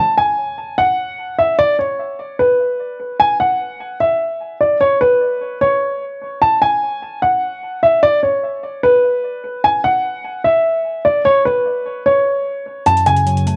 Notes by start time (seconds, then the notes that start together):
Already playing: A5
0.18 G#5
0.78 F#5
1.38 E5
1.59 D5
1.79 C#5
2.39 B4
3.20 G#5
3.40 F#5
4.00 E5
4.61 D5
4.81 C#5
5.01 B4
5.61 C#5
6.42 A5
6.62 G#5
7.22 F#5
7.83 E5
8.03 D5
8.23 C#5
8.83 B4
9.64 G#5
9.84 F#5
10.45 E5
11.05 D5
11.25 C#5
11.45 B4
12.06 C#5
12.86 F#2 A5, closed hi-hat
12.97 closed hi-hat
13.06 C#3 G#5, closed hi-hat
13.16 closed hi-hat
13.26 F#3, closed hi-hat
13.37 closed hi-hat
13.46 A3, closed hi-hat